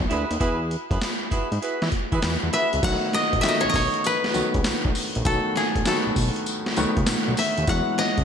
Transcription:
0.00 analog synth bass B1, kick
0.10 analog synth bass D2, horn section E4 F#4 G#4 B4, closed hi-hat
0.31 analog synth bass D#2, closed hi-hat
0.40 analog synth bass E2, horn section E4 F#4 G#4 B4, kick, closed hi-hat
0.71 closed hi-hat
0.91 analog synth bass F#2, horn section E4 F#4 G#4 B4, kick, closed hi-hat
1.01 snare, clap, closed hi-hat
1.31 analog synth bass G#2, horn section E4 F#4 G#4 B4, kick, closed hi-hat
1.52 analog synth bass G#2, closed hi-hat
1.62 horn section E4 F#4 G#4 B4, closed hi-hat
1.82 analog synth bass E3, snare
1.92 kick, closed hi-hat
2.12 analog synth bass E3, horn section E4 F#4 G#4 B4, kick, closed hi-hat
2.22 analog synth bass E2, snare, clap, closed hi-hat
2.43 analog synth bass E2
2.53 horn section E4 F#4 G#4 B4, koto E5, closed hi-hat
2.73 analog synth bass C#2, closed hi-hat
2.82 analog synth bass B1, grand piano D#3 F#3 A3 B3 F#4, koto F#5, kick, closed hi-hat, crash, tambourine
3.13 koto D#5, snare, closed hi-hat
3.33 analog synth bass A1, kick, closed hi-hat
3.41 grand piano D#3 F#3 A3 B3 F#4, koto E5, snare, clap, closed hi-hat, tambourine
3.49 koto D#5
3.61 analog synth bass B1, koto C#5
3.69 koto D#5
3.74 analog synth bass B1, koto C#5, kick, open hi-hat, tambourine
3.94 closed hi-hat
4.04 koto B4, closed hi-hat, tambourine
4.24 snare
4.34 analog synth bass C#2, grand piano D#3 F#3 A3 B3 F#4, closed hi-hat, tambourine
4.54 analog synth bass C#2, kick, closed hi-hat
4.64 analog synth bass B1, snare, clap, closed hi-hat, tambourine
4.85 analog synth bass B1, kick
4.95 open hi-hat, tambourine
5.15 analog synth bass A#1, closed hi-hat
5.25 analog synth bass B1, grand piano D#3 F#3 A3 B3 F#4, koto A4, kick, closed hi-hat, tambourine
5.56 koto G#4, snare, closed hi-hat
5.76 analog synth bass A1, kick, closed hi-hat
5.85 grand piano D#3 F#3 A3 B3 F#4, koto A4, snare, clap, closed hi-hat, tambourine
6.07 analog synth bass B1
6.16 analog synth bass B1, kick, open hi-hat, tambourine
6.36 closed hi-hat
6.46 closed hi-hat, tambourine
6.66 snare
6.76 analog synth bass C#2, grand piano D#3 F#3 A3 B3 F#4, closed hi-hat, tambourine
6.97 analog synth bass C#2, kick, closed hi-hat
7.06 analog synth bass B1, snare, clap, closed hi-hat, tambourine
7.28 analog synth bass B1
7.37 koto E5, open hi-hat, tambourine
7.58 analog synth bass D#2, closed hi-hat
7.67 analog synth bass E2, grand piano E3 F#3 G#3 B3 F#4, koto F#5, kick, closed hi-hat, tambourine
7.98 koto D#5, snare, closed hi-hat
8.18 analog synth bass C#2, kick, closed hi-hat

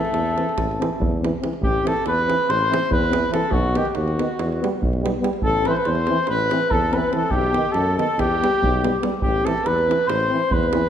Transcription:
Already playing: alto saxophone A3, cornet A4
0.05 davul high
0.13 tuba E2, davul high
0.26 davul high
0.37 euphonium E3, trombone C4, davul high
0.49 davul high
0.57 tuba A1, davul high, davul low
0.71 davul high
0.79 euphonium E3, trombone C4, davul high
1.00 tuba E2, davul low
1.21 euphonium E3, trombone C4, davul high
1.40 euphonium E3, trombone C4, davul high
1.53 davul high
1.61 tuba A1, alto saxophone G4, cornet G4, davul low
1.83 euphonium E3, trombone C4, davul high
1.87 alto saxophone A4, cornet A4
1.96 davul high
2.05 tuba E2, alto saxophone B4, cornet B4, davul high
2.19 davul high
2.27 euphonium E3, trombone C4, davul high
2.49 tuba A1, alto saxophone C5, cornet C5, davul high
2.62 davul high
2.70 euphonium E3, trombone C4, davul high
2.91 tuba E2, cornet B4, alto saxophone B4, davul low
3.04 davul high
3.10 euphonium E3, trombone C4, davul high
3.31 euphonium E3, trombone C4, cornet A4, alto saxophone A4, davul high
3.43 davul high
3.51 tuba B1, alto saxophone F#4, cornet F#4, davul low
3.73 euphonium D#3, trombone B3, alto saxophone G4, cornet G4, davul high
3.85 alto saxophone G4, cornet G4, davul high
3.94 tuba D#2, cornet F#4, alto saxophone F#4, davul high
4.08 davul high
4.17 euphonium D#3, trombone B3, davul high
4.39 tuba E2, davul high
4.52 davul high
4.60 euphonium G3, trombone B3, davul high
4.82 tuba B1, davul low
4.93 davul high
5.02 euphonium G3, trombone B3, davul high
5.20 euphonium G3, trombone B3
5.24 davul high
5.33 davul high
5.42 tuba A1, cornet A4, alto saxophone A4, davul low
5.64 euphonium E3, trombone C4, cornet B4, davul high
5.68 alto saxophone B4 C5, cornet C5
5.76 cornet B4, alto saxophone B4, davul high
5.85 tuba E2, cornet C5, alto saxophone C5, davul high
5.95 davul high
6.07 euphonium E3, trombone C4, davul high
6.27 tuba A1, cornet B4, alto saxophone B4, davul high
6.38 davul high
6.50 euphonium E3, trombone C4, davul high
6.71 tuba E2, cornet A4, alto saxophone A4, davul low
6.83 davul high
6.91 trombone C4, cornet B4, davul high
6.95 euphonium E3, alto saxophone B4
7.10 trombone C4, cornet A4, davul high
7.14 euphonium E3, alto saxophone A4
7.23 davul high
7.30 tuba B1, cornet G4, davul low
7.36 alto saxophone G4
7.43 davul high
7.52 trombone B3, davul high
7.56 euphonium D#3
7.65 davul high
7.72 tuba F#2, cornet A4, davul high
7.76 alto saxophone A4
7.87 davul high
7.98 euphonium D#3, trombone B3, cornet A4, alto saxophone A4, davul high
8.18 tuba E2, cornet G4, alto saxophone G4, davul high, davul low
8.31 davul high
8.41 euphonium G3, trombone B3, davul high
8.54 davul high
8.62 tuba B1, davul low
8.74 davul high
8.82 euphonium G3, trombone B3, davul high
9.01 euphonium G3, trombone B3, davul high
9.21 tuba A1, alto saxophone G4, cornet G4, davul low
9.43 euphonium E3, trombone C4, alto saxophone A4, cornet A4, davul high
9.57 davul high
9.64 tuba E2, alto saxophone B4, cornet B4, davul high
9.78 davul high
9.86 euphonium E3, trombone C4
9.91 davul high
10.07 tuba A1, alto saxophone C5, cornet C5, davul high
10.20 davul high
10.28 euphonium E3, trombone C4
10.51 tuba E2, alto saxophone B4, cornet B4, davul low
10.63 davul high
10.71 euphonium E3, trombone C4, davul high

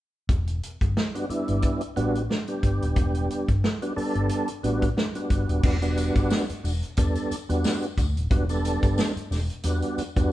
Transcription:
0.29 fingered electric bass E1, kick, closed hi-hat
0.47 closed hi-hat
0.63 closed hi-hat
0.81 fingered electric bass G1, kick, closed hi-hat
0.97 snare
1.15 tonewheel organ G3 B3 D4 F#4, closed hi-hat
1.29 tonewheel organ G3 B3 D4 E4, muted fingered electric bass stroke, closed hi-hat
1.48 fingered electric bass G1, closed hi-hat
1.62 kick, closed hi-hat
1.81 closed hi-hat
1.96 fingered electric bass A1, tonewheel organ G3 B3 D4 F#4, closed hi-hat
2.15 closed hi-hat
2.30 tonewheel organ D4 F#4, snare
2.47 tonewheel organ G3 B3 D4 G4, closed hi-hat
2.63 fingered electric bass G1, kick, closed hi-hat
2.82 fingered electric bass D#1, closed hi-hat
2.96 fingered electric bass E1, kick, closed hi-hat
3.15 closed hi-hat
3.30 closed hi-hat
3.48 fingered electric bass G1, kick, closed hi-hat
3.64 snare
3.82 tonewheel organ G3 B3 D4 F#4, closed hi-hat
3.96 tonewheel organ G3 B3 D4 A4, muted fingered electric bass stroke, open hi-hat
4.15 fingered electric bass G1, closed hi-hat
4.29 closed hi-hat
4.48 closed hi-hat
4.63 fingered electric bass A1, tonewheel organ G3 B3 D4 F#4, closed hi-hat
4.82 kick, closed hi-hat
4.97 tonewheel organ D4 F#4, snare
5.15 tonewheel organ G3 B3 D4 F#4, closed hi-hat
5.30 fingered electric bass G1, kick, closed hi-hat
5.49 fingered electric bass D#1, closed hi-hat
5.63 fingered electric bass E1, tonewheel organ G3 B3 D4 F#4, kick, crash
5.82 tonewheel organ G3 B3 D4 F#4, closed hi-hat, tambourine
5.97 closed hi-hat, tambourine
6.16 fingered electric bass G1, kick, closed hi-hat, tambourine
6.30 snare, tambourine
6.49 muted fingered electric bass stroke, closed hi-hat
6.64 fingered electric bass E1, tonewheel organ D4 F#4, open hi-hat, tambourine
6.83 closed hi-hat
6.97 fingered electric bass E2, tonewheel organ G3 B3 D4 A4, kick, closed hi-hat, tambourine
7.15 closed hi-hat, tambourine
7.31 muted fingered electric bass stroke, closed hi-hat, tambourine
7.49 fingered electric bass E2, tonewheel organ G3 B3 D4 F#4, closed hi-hat, tambourine
7.64 snare, tambourine
7.82 closed hi-hat, tambourine
7.97 fingered electric bass D2, tonewheel organ D4 F#4, kick, closed hi-hat, tambourine
8.16 fingered electric bass D#1, closed hi-hat
8.30 fingered electric bass E1, tonewheel organ G3 B3 D4 F#4, kick, closed hi-hat
8.49 tonewheel organ G3 B3 D4 A4, closed hi-hat, tambourine
8.65 closed hi-hat, tambourine
8.83 fingered electric bass G1, kick, closed hi-hat, tambourine
8.98 snare, tambourine
9.16 muted fingered electric bass stroke, closed hi-hat
9.31 fingered electric bass E1, tonewheel organ D4 G4, snare, open hi-hat, tambourine
9.50 closed hi-hat
9.63 fingered electric bass E2, tonewheel organ G3 B3 D4 F#4, closed hi-hat, tambourine
9.82 closed hi-hat
9.98 muted fingered electric bass stroke, closed hi-hat, tambourine
10.16 fingered electric bass E2, tonewheel organ G3 B3 D4 F#4, kick, closed hi-hat, tambourine

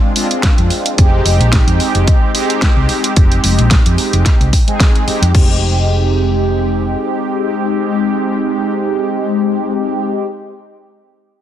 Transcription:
Already playing: analog polysynth G#3 C4 D4 F4
0.16 analog polysynth G#3 C4 D4 F4, open hi-hat
0.29 analog polysynth G#3 C4 D4 F4, closed hi-hat
0.43 kick, snare, closed hi-hat
0.58 fingered electric bass F2, closed hi-hat
0.70 open hi-hat
0.86 closed hi-hat
0.97 fingered electric bass F1, analog polysynth G#3 C4 D#4 G4, kick, closed hi-hat
1.25 fingered electric bass F1, open hi-hat
1.40 fingered electric bass A#1, closed hi-hat
1.52 kick, snare, closed hi-hat
1.67 fingered electric bass F2, closed hi-hat
1.80 open hi-hat
1.95 fingered electric bass F1, closed hi-hat
2.08 kick, closed hi-hat
2.33 analog polysynth G#3 C4 D#4 G4, open hi-hat
2.50 closed hi-hat
2.62 kick, snare, closed hi-hat
2.77 fingered electric bass C2
2.89 open hi-hat
3.04 closed hi-hat
3.15 fingered electric bass F1, analog polysynth G#3 C4 D#4 G4, kick, closed hi-hat
3.32 closed hi-hat
3.44 fingered electric bass F1, open hi-hat
3.59 fingered electric bass A#1, closed hi-hat
3.71 kick, snare, closed hi-hat
3.86 fingered electric bass F2, closed hi-hat
3.98 open hi-hat
4.13 fingered electric bass F1, closed hi-hat
4.26 kick, snare, closed hi-hat
4.40 fingered electric bass C2, closed hi-hat
4.53 kick, open hi-hat
4.67 analog polysynth G#3 C4 D#4 G#4, closed hi-hat
4.80 kick, snare, closed hi-hat
4.95 closed hi-hat
5.07 analog polysynth G#3 C4 D#4 G4, muted fingered electric bass stroke, open hi-hat
5.22 fingered electric bass F2, closed hi-hat
5.33 fingered electric bass F1, analog polysynth G#3 C4 D#4 G4, kick, crash

